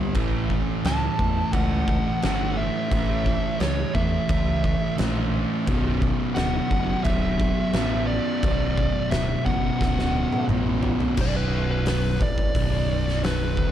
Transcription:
Already playing: G2 D3 G3
0.15 A1 A2 E3 A3, kick, crash
0.50 kick
0.84 C#2 A5, snare, crash
1.19 E2 A2 E3 A3, kick
1.53 C#2 F#5, kick, crash
1.88 kick
2.22 G1 A2 E3 A3, snare, crash
2.57 E5
2.91 A1 A2 E3 A3, kick, crash
3.26 kick
3.60 C#2 C#5, snare, crash
3.94 E2 A2 E3 A3 E5, kick
4.29 C#2, kick, crash
4.64 kick
4.98 A#1 A2 E3 A3, snare, crash
5.67 B0 B1 F#2 B2, kick, crash
6.02 kick
6.35 D1 F#5, snare, crash
6.71 F#1 B1 F#2 B2, kick
7.04 D1 E5, kick, crash
7.40 kick
7.73 A1 B1 F#2 B2, snare, crash
8.07 D5
8.43 B0 B1 F#2 B2, kick, crash
8.78 kick
9.10 D1 E5, snare, crash
9.46 F#1 B1 F#2 B2 F#5, kick
9.80 D1, kick, snare
9.99 snare
10.32 high tom
10.48 A1 B1 F#2, mid tom
10.52 B2
10.83 floor tom
11.00 floor tom
11.17 B0 B1, kick, crash
11.21 D5
11.36 B4
11.71 B4
11.86 B4, snare, open hi-hat
12.20 A1 A2 D5, kick
12.38 kick
12.55 B0 B1, kick, open hi-hat
13.08 snare
13.24 B4, snare, open hi-hat
13.57 D1 D2, kick

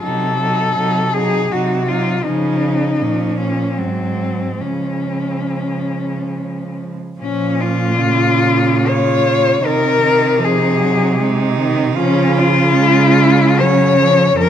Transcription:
0.02 C3 F#3 D#4 A4
0.38 F#3
0.42 D#4
0.76 C3 F#3 D#4
1.13 F#3 D#4 G#4
1.51 C3 F#3 D#4 F#4
1.88 F#3 D#4 F4
2.23 F3 C#4 D#4
2.27 C#3
3.01 A#2 F3 C#4
3.38 C#4
3.78 G#2 F#3 G#3 C4
4.61 C#3 F3 G#3 C#4
7.19 A#2 F3 C#4
7.60 F4
8.00 C#3 C#4
8.86 F4 C#5
9.62 C3 D#3 A#4
9.67 D#4
9.99 D#3
10.38 F3
10.44 G#4
10.80 F#3
11.20 G#3 D#4
11.60 D#3
11.95 C#3 F3 C#4 F4
12.38 F4
12.74 G#3 C#4
13.59 F#3 C#5
14.00 F3
14.34 F2 F3 C#4
14.38 A#4

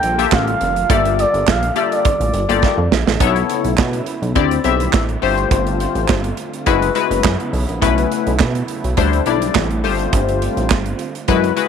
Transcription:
Already playing: D3 G3 A#3 F4 A4 G5
0.03 A#1, closed hi-hat
0.18 A#3 F4 G4 A4 E5, closed hi-hat
0.32 A1 F5, kick, snare, clap
0.48 closed hi-hat
0.61 F1, closed hi-hat
0.76 closed hi-hat
0.89 G1 A#3 F4 G4 A4 D5 E5, kick, closed hi-hat
1.05 closed hi-hat
1.19 D5, closed hi-hat
1.34 G1, closed hi-hat
1.47 A#1 F5, kick, snare, clap
1.63 closed hi-hat
1.76 A#3 F4 G4 A4 D5 E5, closed hi-hat
1.92 D5, closed hi-hat
2.05 kick, closed hi-hat
2.20 A1, closed hi-hat
2.34 G1, closed hi-hat
2.49 G1 A#3 F4 G4 A4 D5, closed hi-hat
2.63 kick, snare
2.78 F2
2.91 A#1, snare
3.07 A1, snare
3.20 B1 C#3 F#3 A3 B3 D#4 E4 A4 C#5, kick, closed hi-hat
3.27 E4
3.36 closed hi-hat
3.50 closed hi-hat
3.64 B1, closed hi-hat
3.78 B2, kick, snare, clap
3.93 closed hi-hat
4.06 closed hi-hat
4.22 B1, closed hi-hat
4.35 D2 D3 G3 A3 C4 E4 G4 D5, kick, closed hi-hat
4.51 closed hi-hat
4.64 B1 C4 E4 G4 E5, closed hi-hat
4.80 closed hi-hat
4.93 A1, kick, snare, clap
5.09 closed hi-hat
5.22 G1 D3 A3 F4 G4 C5, open hi-hat
5.38 closed hi-hat
5.51 G1, kick, closed hi-hat
5.67 closed hi-hat
5.80 closed hi-hat
5.95 A1, closed hi-hat
6.09 G1, kick, snare, clap
6.24 closed hi-hat
6.37 closed hi-hat
6.53 closed hi-hat
6.66 F#1 C#3 F#3 G#3 B3 E4 F#4 B4, kick, closed hi-hat
6.82 closed hi-hat
6.95 G#3 E4 F#4 B4, closed hi-hat
7.11 F#1, closed hi-hat
7.24 F#2, kick, snare, clap
7.40 closed hi-hat
7.53 B1, open hi-hat
7.69 A#1, closed hi-hat
7.81 B1 A3 C#4 E4 B4, kick, closed hi-hat
7.98 closed hi-hat
8.12 closed hi-hat
8.26 B1, closed hi-hat
8.40 B2, kick, snare, clap
8.55 closed hi-hat
8.68 closed hi-hat
8.84 B1, closed hi-hat
8.97 D2 D3 G3 C4 D4 E4 C5, kick, closed hi-hat
9.13 closed hi-hat
9.26 B1 G3 D4 E4 D5, closed hi-hat
9.42 closed hi-hat
9.55 A1, kick, snare, clap
9.71 closed hi-hat
9.84 G1 A3 C4 F4 G4 C5, open hi-hat
9.99 closed hi-hat
10.13 G1, kick, closed hi-hat
10.29 closed hi-hat
10.42 closed hi-hat
10.57 A1, closed hi-hat
10.70 G1, kick, snare, clap
10.86 closed hi-hat
10.99 closed hi-hat
11.15 closed hi-hat
11.28 F#2 C#3 F#3 G#3 B3 E4 F#4 B4, kick, closed hi-hat
11.44 closed hi-hat
11.56 G#3 E4 F#4 B4, closed hi-hat

